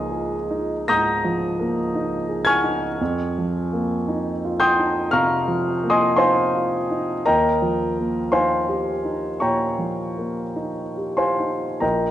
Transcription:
0.00 0.82 C#2 soft
0.00 1.24 F3 soft
0.00 1.60 A#3 soft
0.00 0.34 D#4 soft
0.00 0.83 D#5 medium
0.00 0.83 G#5 medium
0.00 0.82 C6 medium
0.00 0.86 D#6 medium
0.12 0.73 G#4 soft
0.51 1.10 D#4 soft
0.88 1.46 G#2 soft
0.88 2.42 A#5 medium
0.88 2.43 D#6 medium
0.88 2.43 G6 medium
0.88 2.46 A#6 medium
1.24 1.80 F3 soft
1.60 2.15 A#3 soft
1.95 2.51 D#4 soft
2.29 2.86 G#4 soft
2.45 4.57 G#5 medium
2.45 4.58 C#6 medium
2.45 4.57 F6 medium
2.45 4.61 G#6 medium
2.64 3.00 D#4 soft
3.01 5.11 F2 medium
3.38 3.94 F3 soft
3.73 4.29 A#3 soft
4.08 4.65 D#4 soft
4.45 5.01 F4 soft
4.60 5.10 G5 medium
4.60 5.10 C6 medium
4.60 5.10 D#6 medium
4.60 5.14 G6 medium
4.79 5.36 D#4 soft
5.11 5.70 C3 soft
5.11 5.88 F5 medium
5.11 5.88 A#5 medium
5.11 5.88 C#6 medium
5.11 5.91 F6 medium
5.48 6.05 F3 soft
5.84 6.41 A#3 soft
5.90 6.16 D#5 medium
5.90 6.16 G#5 medium
5.90 6.15 C6 medium
5.90 6.18 D#6 medium
6.16 6.76 D#4 soft
6.16 7.22 C5 medium
6.16 7.22 F5 medium
6.16 7.22 G#5 medium
6.16 7.25 C6 medium
6.55 7.12 F4 soft
6.91 7.27 D#4 soft
7.26 9.39 D#2 soft
7.26 8.31 A#4 medium
7.26 8.31 D#5 medium
7.26 8.31 G5 medium
7.26 8.34 A#5 medium
7.62 8.20 F3 soft
7.99 8.57 A#3 soft
8.32 8.91 D#4 soft
8.32 9.38 C5 medium
8.32 9.38 F5 medium
8.32 9.38 G#5 medium
8.32 9.42 C6 medium
8.68 9.27 G4 soft
9.05 9.65 D#4 soft
9.40 10.02 A#2 soft
9.40 11.13 C#5 medium
9.40 11.14 G5 soft
9.40 11.13 A#5 medium
9.40 11.17 C#6 medium
9.79 10.41 F3 soft
10.18 10.81 A#3 soft
10.56 11.22 D#4 soft
10.97 11.64 G4 soft
11.17 11.78 C5 soft
11.17 11.78 F5 soft
11.17 11.77 G#5 soft
11.17 11.81 C6 medium
11.40 11.82 D#4 soft
11.80 12.11 A#1 soft
11.80 12.11 A#4 soft
11.80 12.11 D#5 soft
11.80 12.11 G5 soft
11.80 12.11 A#5 medium

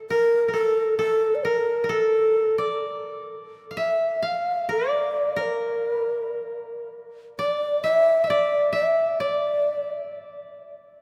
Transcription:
0.00 0.16 A4 medium
0.10 0.51 A#4 loud
0.10 0.48 A#4 medium
0.48 0.59 A#4 soft
0.53 0.98 A4 medium
0.53 0.96 A4 medium
0.98 1.36 A4 loud
0.98 1.51 A4 medium
1.35 1.45 D5 medium
1.44 1.93 A#4 loud
1.44 1.83 A#4 medium
1.84 1.95 A#4 medium
1.89 3.80 A4 medium
1.89 2.83 A4 loud
2.58 4.18 D5 medium
3.71 3.83 F5 medium
3.77 4.28 E5 medium
4.22 5.67 F5 medium
4.22 4.71 F5 medium
4.69 6.29 D5 medium
4.69 5.43 D5 medium
5.36 5.90 A#4 medium
5.42 6.95 A#4 medium
5.90 6.05 B4 medium
6.05 6.20 A#4 medium
6.20 6.35 B4 medium
6.35 7.20 A#4 medium
7.39 8.30 D5 medium
7.39 7.80 D5 loud
7.83 8.29 E5 medium
7.83 8.23 E5 medium
8.24 8.73 D5 loud
8.24 8.72 E5 medium
8.30 9.20 D5 medium
8.73 10.22 E5 medium
8.73 9.22 E5 medium
9.20 10.80 D5 medium
9.20 10.16 D5 medium

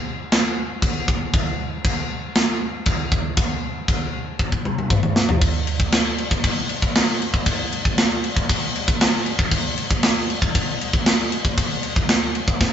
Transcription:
0.32 snare loud
0.32 china medium
0.82 kick medium
0.82 china medium
1.08 kick medium
1.34 kick loud
1.34 china medium
1.85 kick medium
1.85 china medium
2.35 snare loud
2.35 china medium
2.86 kick loud
2.86 china medium
3.12 kick medium
3.37 kick loud
3.37 china medium
3.88 kick medium
3.88 china medium
4.39 kick medium
4.52 kick medium
4.65 mid tom medium
4.78 mid tom medium
4.90 kick medium
4.90 mid tom medium
5.03 mid tom medium
5.16 snare loud
5.29 floor tom medium
5.41 kick loud
5.41 crash medium
5.67 crash medium
5.80 kick medium
5.92 snare loud
5.92 crash medium
6.18 crash medium
6.31 kick loud
6.44 kick loud
6.44 crash medium
6.69 crash medium
6.82 kick medium
6.95 snare loud
6.95 crash medium
7.22 crash medium
7.34 kick medium
7.46 kick loud
7.46 crash medium
7.72 crash medium
7.85 kick medium
7.98 snare loud
7.98 crash medium
8.24 crash medium
8.36 kick medium
8.49 kick loud
8.49 crash medium
8.76 crash medium
8.88 kick medium
9.01 snare loud
9.01 crash medium
9.26 crash medium
9.39 kick medium
9.51 kick loud
9.51 crash medium
9.77 crash medium
9.91 kick medium
10.03 snare loud
10.03 crash medium
10.30 crash medium
10.42 kick loud
10.55 kick loud
10.55 crash medium
10.81 crash medium
10.93 kick medium
11.06 snare loud
11.06 crash medium
11.32 crash medium
11.45 kick medium
11.58 kick loud
11.58 crash medium
11.83 crash medium
11.96 kick medium
12.09 snare loud
12.09 crash medium
12.35 crash medium
12.48 kick loud
12.61 kick loud
12.61 snare medium

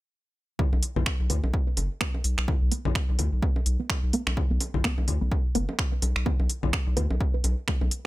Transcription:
0.59 0.61 B3 loud
0.59 kick loud
0.59 low conga medium
0.73 0.81 B1 loud
0.73 low bongo soft
0.83 open hi-hat medium
0.96 1.04 B1 loud
0.96 0.98 B3 medium
0.96 low conga medium
1.06 finger snap medium
1.06 kick loud
1.06 low bongo soft
1.20 1.28 B1 medium
1.30 1.41 D2 medium
1.30 1.32 B3 medium
1.30 open hi-hat medium
1.30 low conga medium
1.44 1.52 B1 loud
1.44 low bongo soft
1.54 kick loud
1.67 1.69 B3 medium
1.77 1.88 F#1 loud
1.77 open hi-hat medium
1.77 low bongo soft
2.01 2.03 B3 loud
2.01 finger snap medium
2.01 kick loud
2.14 low bongo soft
2.24 2.35 B1 medium
2.24 open hi-hat medium
2.38 2.46 B1 medium
2.38 2.40 B3 medium
2.38 finger snap medium
2.48 kick loud
2.48 low bongo soft
2.48 low conga medium
2.62 2.70 B1 loud
2.72 2.74 B3 loud
2.72 open hi-hat medium
2.85 2.93 B1 loud
2.85 low bongo soft
2.85 low conga medium
2.95 finger snap medium
2.95 kick loud
3.09 3.17 B1 medium
3.09 3.11 B3 medium
3.19 3.30 D2 medium
3.19 open hi-hat medium
3.19 low bongo soft
3.19 low conga medium
3.32 3.41 B1 loud
3.42 3.45 B3 loud
3.42 kick loud
3.56 low bongo soft
3.66 3.77 B1 medium
3.66 open hi-hat medium
3.80 3.82 B3 medium
3.90 finger snap medium
3.90 kick loud
3.90 low bongo soft
4.03 4.11 B1 loud
4.13 4.16 B3 loud
4.13 open hi-hat medium
4.27 4.35 B1 medium
4.27 finger snap medium
4.27 low bongo soft
4.37 kick loud
4.37 low conga medium
4.51 4.59 B1 loud
4.51 4.53 B3 medium
4.61 open hi-hat medium
4.61 low bongo soft
4.74 4.82 B1 loud
4.74 low conga medium
4.84 4.87 B3 loud
4.84 finger snap medium
4.84 kick loud
4.98 5.06 B1 medium
4.98 low bongo soft
5.08 5.19 D2 medium
5.08 open hi-hat medium
5.08 low conga medium
5.21 5.30 B1 loud
5.21 5.23 B3 medium
5.31 kick loud
5.31 low bongo soft
5.55 5.66 F#1 loud
5.55 5.57 B3 loud
5.55 open hi-hat medium
5.69 low bongo soft
5.79 finger snap medium
5.79 kick loud
5.92 5.94 B3 medium
6.02 6.13 B1 medium
6.02 open hi-hat medium
6.02 low bongo soft
6.16 6.24 B1 medium
6.16 finger snap medium
6.26 6.28 B3 loud
6.26 kick loud
6.26 low conga medium
6.40 6.48 B1 loud
6.40 low bongo soft
6.50 open hi-hat medium
6.63 6.71 B1 loud
6.63 6.65 B3 medium
6.63 low conga medium
6.73 finger snap medium
6.73 kick loud
6.73 low bongo soft
6.87 6.95 B1 medium
6.97 7.08 D2 medium
6.97 6.99 B3 loud
6.97 open hi-hat medium
6.97 low conga medium
7.11 7.19 B1 loud
7.11 low bongo soft
7.21 kick loud
7.34 7.36 B3 medium
7.44 7.55 B1 medium
7.44 open hi-hat medium
7.44 low bongo soft
7.68 7.70 A3 medium
7.68 finger snap medium
7.68 kick loud
7.81 7.89 B1 loud
7.81 7.86 B3 medium
7.81 low bongo soft
7.91 open hi-hat medium

